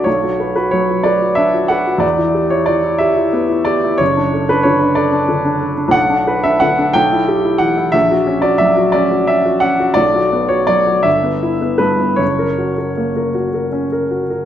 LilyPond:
\new Staff \with { instrumentName = "Upright piano" } { \time 6/8 \key d \major \tempo 4. = 60 << { cis''8. b'16 cis''8 d''8 e''8 fis''8 | d''8. cis''16 d''8 e''4 d''8 | cis''8. b'16 cis''8 d''8 r4 | \key fis \phrygian fis''8. e''16 fis''8 g''4 fis''8 |
e''8. d''16 e''8 d''8 e''8 fis''8 | d''8. cis''16 d''8 e''4 b'8 | cis''4. r4. | } \\ { b,,16 fis'16 b'16 fis'16 fis16 fis'16 b'16 fis'16 d'16 fis'16 b'16 fis'16 | e,16 e'16 g'16 e'16 e16 e'16 g'16 e'16 b16 e'16 g'16 e'16 | fis,,16 d'16 a'16 d'16 d16 d'16 a'16 d'16 d16 d'16 a'16 d'16 | b,,16 d'16 b'16 d'16 d16 d'16 b,,16 e'16 g'16 e'16 e16 e'16 |
ais,,16 fis'16 cis'16 fis'16 fis16 fis'16 cis'16 fis'16 cis'16 fis'16 cis'16 fis'16 | b,,16 fis'16 b16 fis'16 fis16 fis'16 g,,16 b16 e'16 b16 g,16 b16 | fis,,16 ais'16 fis'16 ais'16 ais16 ais'16 fis'16 ais'16 cis'16 ais'16 fis'16 ais'16 | } >> }